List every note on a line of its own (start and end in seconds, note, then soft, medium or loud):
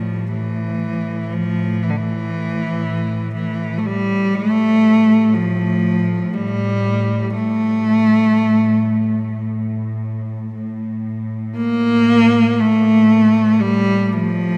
0.00 10.53 A2 soft
0.00 0.30 F3 medium
0.33 1.34 E3 medium
1.32 1.84 F3 medium
1.82 1.91 E3 medium
1.89 1.98 D3 medium
1.96 3.34 E3 medium
3.35 3.80 E3 medium
3.78 3.87 A3 medium
3.86 4.36 G3 medium
4.35 5.35 A3 medium
5.33 6.35 F3 medium
6.34 7.35 G3 medium
7.35 9.41 A3 medium
10.54 14.57 A2 soft
11.56 12.61 A#3 loud
12.59 13.62 A3 medium
13.61 14.14 G3 loud
14.12 14.57 F3 medium